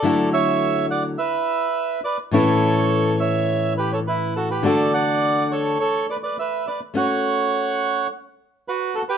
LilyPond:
<<
  \new Staff \with { instrumentName = "Bandoneon" } { \time 4/4 \key d \major \tempo 4 = 104 <a' d''>8 <cis'' e''>4 <d'' fis''>8 <b' e''>4. <b' d''>8 | <a' cis''>4. <cis'' e''>4 <g' b'>16 <a' cis''>16 <e' b'>8 <fis' a'>16 <g' b'>16 | <a' d''>8 <d'' fis''>4 <a' cis''>8 <a' cis''>8 <b' d''>16 <b' d''>16 <b' e''>8 <b' d''>8 | <cis'' fis''>2 r4 <fis' b'>8 <fis' a'>16 <g' b'>16 | }
  \new Staff \with { instrumentName = "Nylon-string guitar" } { \time 4/4 \key d \major <d fis a e' fis'>2 r2 | <a, e a cis' e'>1 | <d a d' fis'>2 r2 | <a cis' fis'>2 r2 | }
>>